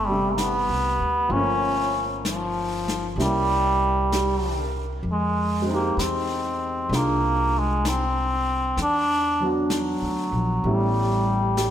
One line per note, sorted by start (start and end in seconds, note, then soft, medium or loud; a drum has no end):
0.00 0.65 G1 medium
0.00 1.31 E3 soft
0.00 0.08 G3 soft
0.00 1.31 B3 soft
0.00 1.31 D4 soft
0.07 0.39 G3 medium
0.07 1.31 G3 soft
0.07 1.30 A3 soft
0.11 1.33 C3 soft
0.37 1.33 B3 medium
0.37 brush sweep soft
0.37 snare soft
0.37 hi-hat pedal soft
0.68 0.97 C2 medium
1.00 1.29 D2 medium
1.29 3.13 G1 medium
1.29 3.17 F3 soft
1.29 3.18 A3 soft
1.29 3.17 A#3 medium
1.29 2.08 C#4 medium
1.29 brush sweep soft
1.33 3.17 C#4 medium
2.25 3.15 F3 medium
2.25 brush sweep soft
2.25 snare soft
2.25 hi-hat pedal soft
2.88 snare soft
3.16 5.00 C2 medium
3.16 5.04 G3 soft
3.16 5.05 A#3 soft
3.16 5.05 C#4 soft
3.16 5.05 E4 soft
3.16 brush sweep soft
3.16 snare soft
3.21 4.72 G3 medium
4.12 4.87 G4 soft
4.12 brush sweep soft
4.12 snare soft
4.12 hi-hat pedal soft
4.59 5.25 A#4 soft
5.03 5.93 F2 medium
5.03 brush sweep soft
5.12 5.68 G#3 medium
5.62 8.75 G#3 soft
5.66 8.77 C4 soft
5.66 8.79 D#4 soft
5.73 6.03 A#3 medium
5.73 8.81 G4 medium
5.97 6.87 E2 medium
5.97 brush sweep soft
5.97 snare soft
5.97 hi-hat pedal soft
6.01 6.97 C4 medium
6.89 8.73 C2 medium
6.89 8.78 D4 soft
6.89 8.79 F4 soft
6.89 8.79 G#4 soft
6.89 brush sweep soft
6.89 snare soft
6.95 7.60 A#3 medium
7.59 7.90 G#3 medium
7.85 8.80 C4 medium
7.85 brush sweep soft
7.85 snare soft
7.85 hi-hat pedal soft
8.77 9.98 E2 medium
8.77 brush sweep soft
8.77 snare soft
8.82 9.52 D4 medium
9.40 10.64 F#3 soft
9.40 10.64 B3 soft
9.40 10.66 D4 soft
9.45 10.67 F#4 soft
9.70 brush sweep soft
9.70 snare soft
9.70 hi-hat pedal soft
9.77 10.75 F#3 medium
10.02 10.31 D2 medium
10.32 10.62 A#1 medium
10.64 11.70 A1 medium
10.64 11.70 G3 soft
10.64 11.70 B3 soft
10.64 11.70 C#4 soft
10.64 11.70 E4 soft
10.64 brush sweep soft
10.74 11.70 G3 medium
11.57 11.70 G4 soft
11.57 brush sweep soft
11.57 snare soft
11.57 hi-hat pedal soft